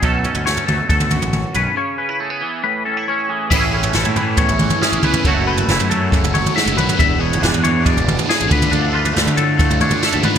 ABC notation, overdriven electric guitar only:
X:1
M:4/4
L:1/8
Q:1/4=138
K:A
V:1 name="Overdriven electric guitar"
z8 | z8 | [A,,E,A,CE] [A,CE] [E,A,CE] [A,CE] [A,,E,A,CE]2 [E,A,CE] [A,CE] | [F,A,CF] [A,CF] [F,A,CF] [A,CF] [F,A,CF]2 [F,A,CF] [A,CF] |
[E,B,DG] [B,DG] [E,B,DG] [B,DG] [E,B,DG]2 [E,B,DG] [D,A,D=F] | [D,A,D=F] [A,DF] [D,A,DF] [A,DF] [D,A,DF]2 [D,A,DF] [A,DF] |]